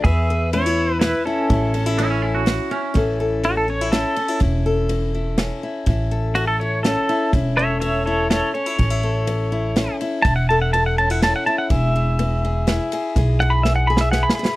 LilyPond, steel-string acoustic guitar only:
\new Staff \with { instrumentName = "Steel-string acoustic guitar" } { \time 3/4 \key a \major \tempo 4 = 124 << { b'8 b'8 cis'16 e'4~ e'16 e'8 | e'8 cis'16 e'16 cis'4. e'8 | <e cis' e' a'>8 a'4 cis'16 e'16 cis'8 cis'16 e'16 | e'8 a'4 e'8 cis'8 e'8 |
e'8 a'4 e'8 cis'8 e'8 | e'8 a'4 e'8 cis'8 cis'16 e'16 | cis'16 e'16 a'4 e'8 cis'8 e'8 | e'8 a'4 cis'16 e'16 cis'8 e'8 |
gis'8 gis'4 gis'8 e'8 gis'8 | gis'8 gis'4 gis'8 e'8 gis'8 | } \\ { e4 gis4 b,4 | a,4 e4 e4 | a,4 e4 e4 | a,4 e4 e4 |
a,4 e4 e4 | a,4 e4 e4 | a,4 e4 e4 | a,4 e4 e4 |
e4 b4 b4 | e4 b4 b4 | } >> }